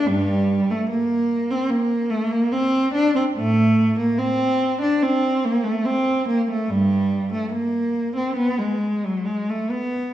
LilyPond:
\new Staff \with { instrumentName = "Cello" } { \time 4/4 \key bes \lydian \tempo 4 = 72 <g, g>8. a16 bes8. c'16 bes8 a16 bes16 c'8 d'16 c'16 | <a, a>8. bes16 c'8. d'16 c'8 bes16 a16 c'8 bes16 a16 | <g, g>8. a16 bes8. c'16 b16 gis8 fis16 gis16 a16 b8 | }